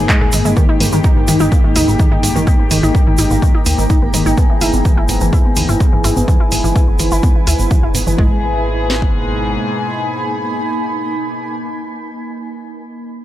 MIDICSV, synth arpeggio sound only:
0, 0, Header, 1, 2, 480
1, 0, Start_track
1, 0, Key_signature, 5, "minor"
1, 0, Tempo, 476190
1, 571, Time_signature, 4, 2, 24, 8
1, 13353, End_track
2, 0, Start_track
2, 0, Title_t, "Synth arpeggio sound"
2, 0, Program_c, 0, 84
2, 91, Note_on_c, 0, 56, 104
2, 187, Note_off_c, 0, 56, 0
2, 214, Note_on_c, 0, 68, 100
2, 325, Note_off_c, 0, 68, 0
2, 331, Note_on_c, 0, 63, 74
2, 389, Note_off_c, 0, 63, 0
2, 455, Note_on_c, 0, 56, 97
2, 545, Note_off_c, 0, 56, 0
2, 571, Note_on_c, 0, 51, 104
2, 667, Note_off_c, 0, 51, 0
2, 694, Note_on_c, 0, 63, 97
2, 804, Note_off_c, 0, 63, 0
2, 811, Note_on_c, 0, 58, 71
2, 907, Note_off_c, 0, 58, 0
2, 935, Note_on_c, 0, 51, 98
2, 1025, Note_off_c, 0, 51, 0
2, 1051, Note_on_c, 0, 63, 99
2, 1168, Note_off_c, 0, 63, 0
2, 1175, Note_on_c, 0, 58, 74
2, 1265, Note_off_c, 0, 58, 0
2, 1291, Note_on_c, 0, 51, 98
2, 1387, Note_off_c, 0, 51, 0
2, 1414, Note_on_c, 0, 63, 100
2, 1525, Note_off_c, 0, 63, 0
2, 1531, Note_on_c, 0, 58, 78
2, 1627, Note_off_c, 0, 58, 0
2, 1655, Note_on_c, 0, 51, 94
2, 1745, Note_off_c, 0, 51, 0
2, 1771, Note_on_c, 0, 63, 97
2, 1888, Note_off_c, 0, 63, 0
2, 1895, Note_on_c, 0, 58, 70
2, 1985, Note_off_c, 0, 58, 0
2, 2011, Note_on_c, 0, 51, 98
2, 2107, Note_off_c, 0, 51, 0
2, 2134, Note_on_c, 0, 63, 96
2, 2244, Note_off_c, 0, 63, 0
2, 2250, Note_on_c, 0, 58, 71
2, 2347, Note_off_c, 0, 58, 0
2, 2374, Note_on_c, 0, 51, 101
2, 2465, Note_off_c, 0, 51, 0
2, 2490, Note_on_c, 0, 63, 95
2, 2608, Note_off_c, 0, 63, 0
2, 2614, Note_on_c, 0, 58, 73
2, 2705, Note_off_c, 0, 58, 0
2, 2731, Note_on_c, 0, 51, 100
2, 2827, Note_off_c, 0, 51, 0
2, 2855, Note_on_c, 0, 63, 98
2, 2965, Note_off_c, 0, 63, 0
2, 2971, Note_on_c, 0, 58, 79
2, 3067, Note_off_c, 0, 58, 0
2, 3094, Note_on_c, 0, 51, 100
2, 3185, Note_off_c, 0, 51, 0
2, 3211, Note_on_c, 0, 63, 99
2, 3328, Note_off_c, 0, 63, 0
2, 3334, Note_on_c, 0, 58, 75
2, 3425, Note_off_c, 0, 58, 0
2, 3450, Note_on_c, 0, 51, 98
2, 3547, Note_off_c, 0, 51, 0
2, 3574, Note_on_c, 0, 63, 95
2, 3684, Note_off_c, 0, 63, 0
2, 3691, Note_on_c, 0, 58, 78
2, 3787, Note_off_c, 0, 58, 0
2, 3814, Note_on_c, 0, 51, 93
2, 3905, Note_off_c, 0, 51, 0
2, 3930, Note_on_c, 0, 63, 101
2, 4048, Note_off_c, 0, 63, 0
2, 4054, Note_on_c, 0, 58, 73
2, 4145, Note_off_c, 0, 58, 0
2, 4170, Note_on_c, 0, 51, 95
2, 4267, Note_off_c, 0, 51, 0
2, 4294, Note_on_c, 0, 63, 101
2, 4404, Note_off_c, 0, 63, 0
2, 4410, Note_on_c, 0, 59, 82
2, 4507, Note_off_c, 0, 59, 0
2, 4534, Note_on_c, 0, 52, 97
2, 4625, Note_off_c, 0, 52, 0
2, 4651, Note_on_c, 0, 64, 99
2, 4768, Note_off_c, 0, 64, 0
2, 4774, Note_on_c, 0, 59, 72
2, 4865, Note_off_c, 0, 59, 0
2, 4890, Note_on_c, 0, 52, 97
2, 4987, Note_off_c, 0, 52, 0
2, 5014, Note_on_c, 0, 64, 97
2, 5124, Note_off_c, 0, 64, 0
2, 5131, Note_on_c, 0, 59, 71
2, 5227, Note_off_c, 0, 59, 0
2, 5254, Note_on_c, 0, 52, 96
2, 5345, Note_off_c, 0, 52, 0
2, 5371, Note_on_c, 0, 64, 98
2, 5488, Note_off_c, 0, 64, 0
2, 5494, Note_on_c, 0, 59, 75
2, 5585, Note_off_c, 0, 59, 0
2, 5611, Note_on_c, 0, 52, 98
2, 5707, Note_off_c, 0, 52, 0
2, 5734, Note_on_c, 0, 64, 90
2, 5844, Note_off_c, 0, 64, 0
2, 5850, Note_on_c, 0, 59, 78
2, 5947, Note_off_c, 0, 59, 0
2, 5974, Note_on_c, 0, 52, 95
2, 6065, Note_off_c, 0, 52, 0
2, 6091, Note_on_c, 0, 64, 97
2, 6208, Note_off_c, 0, 64, 0
2, 6214, Note_on_c, 0, 59, 74
2, 6305, Note_off_c, 0, 59, 0
2, 6330, Note_on_c, 0, 52, 101
2, 6427, Note_off_c, 0, 52, 0
2, 6454, Note_on_c, 0, 64, 94
2, 6564, Note_off_c, 0, 64, 0
2, 6570, Note_on_c, 0, 59, 73
2, 6667, Note_off_c, 0, 59, 0
2, 6694, Note_on_c, 0, 52, 99
2, 6785, Note_off_c, 0, 52, 0
2, 6810, Note_on_c, 0, 64, 96
2, 6928, Note_off_c, 0, 64, 0
2, 6934, Note_on_c, 0, 59, 74
2, 7025, Note_off_c, 0, 59, 0
2, 7051, Note_on_c, 0, 52, 97
2, 7147, Note_off_c, 0, 52, 0
2, 7175, Note_on_c, 0, 64, 97
2, 7285, Note_off_c, 0, 64, 0
2, 7290, Note_on_c, 0, 59, 80
2, 7387, Note_off_c, 0, 59, 0
2, 7415, Note_on_c, 0, 52, 94
2, 7505, Note_off_c, 0, 52, 0
2, 7531, Note_on_c, 0, 64, 97
2, 7648, Note_off_c, 0, 64, 0
2, 7655, Note_on_c, 0, 59, 68
2, 7745, Note_off_c, 0, 59, 0
2, 7771, Note_on_c, 0, 52, 100
2, 7867, Note_off_c, 0, 52, 0
2, 7894, Note_on_c, 0, 64, 94
2, 8005, Note_off_c, 0, 64, 0
2, 8011, Note_on_c, 0, 59, 71
2, 8107, Note_off_c, 0, 59, 0
2, 8134, Note_on_c, 0, 52, 98
2, 8225, Note_off_c, 0, 52, 0
2, 8251, Note_on_c, 0, 56, 91
2, 8474, Note_off_c, 0, 56, 0
2, 13353, End_track
0, 0, End_of_file